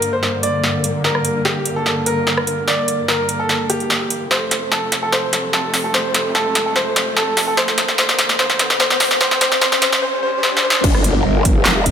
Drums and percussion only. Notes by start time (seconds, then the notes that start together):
0.02 closed hi-hat
0.23 snare
0.43 closed hi-hat
0.64 snare
0.84 closed hi-hat
1.04 snare
1.15 cross-stick
1.25 closed hi-hat
1.45 snare
1.66 closed hi-hat
1.86 snare
2.06 closed hi-hat
2.27 snare
2.37 cross-stick
2.47 closed hi-hat
2.68 snare
2.88 closed hi-hat
3.08 snare
3.29 closed hi-hat
3.49 snare
3.70 closed hi-hat
3.80 closed hi-hat
3.90 snare
4.10 closed hi-hat
4.31 snare
4.51 snare, closed hi-hat
4.72 snare
4.92 snare, closed hi-hat
5.12 snare
5.33 snare, closed hi-hat
5.53 snare
5.74 snare, open hi-hat
5.94 snare
6.14 snare, closed hi-hat
6.35 snare
6.55 snare, closed hi-hat
6.76 snare
6.96 snare, closed hi-hat
7.17 snare
7.37 snare, open hi-hat
7.57 snare
7.68 snare
7.78 snare, closed hi-hat
7.88 snare
7.98 snare
8.09 snare
8.19 snare, closed hi-hat
8.29 snare
8.39 snare
8.50 snare
8.59 snare, closed hi-hat
8.70 snare
8.80 snare
8.90 snare
9.00 snare, open hi-hat
9.11 snare
9.21 snare
9.31 snare
9.41 snare, closed hi-hat
9.52 snare
9.61 snare
9.72 snare
9.82 snare, closed hi-hat
9.93 snare
10.43 snare
10.57 snare
10.70 snare
10.84 kick, crash
10.95 cross-stick
11.04 closed hi-hat
11.45 kick, closed hi-hat
11.65 snare, clap
11.86 kick, closed hi-hat